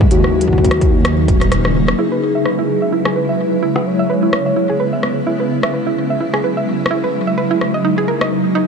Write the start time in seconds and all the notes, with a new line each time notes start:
Already playing: G#4
0.01 kick
0.11 D#2 C#3 F#3 A#3 D#4 F#4, closed hi-hat
0.24 cross-stick
0.41 closed hi-hat
0.48 kick
0.53 kick
0.58 kick
0.65 kick, closed hi-hat
0.71 cross-stick, closed hi-hat
0.81 kick, closed hi-hat
1.05 cross-stick, closed hi-hat
1.28 D#1, kick, closed hi-hat
1.41 cross-stick, closed hi-hat
1.52 cross-stick, closed hi-hat
1.65 cross-stick
1.88 cross-stick
1.98 C#3 F#3 G#3 E4 G#4
2.12 B4
2.35 E5
2.45 B4, cross-stick
2.59 E4
2.82 E5
2.92 E4 B4
3.05 G#4, cross-stick
3.16 B4
3.29 E5
3.63 E4
3.76 B4, cross-stick
3.86 B3 E4 C#5
3.99 E5
4.10 B4
4.23 E4
4.33 cross-stick
4.46 E5
4.56 E4
4.70 G#4
4.80 B4
4.93 E5
5.03 cross-stick
5.27 E4
5.40 B4
5.63 E5, cross-stick
5.74 F#3 G#3 B4
5.87 E4
6.10 E5
6.21 E4
6.34 G#4, cross-stick
6.44 B4
6.57 E5
6.86 cross-stick
6.91 E4
7.04 B4
7.27 E5
7.38 B4
7.51 E4
7.61 F#3 A#3 D#4, cross-stick
7.74 D#5
7.85 D#4
7.98 G#4
8.08 A#4
8.21 D#5, cross-stick
8.55 D#4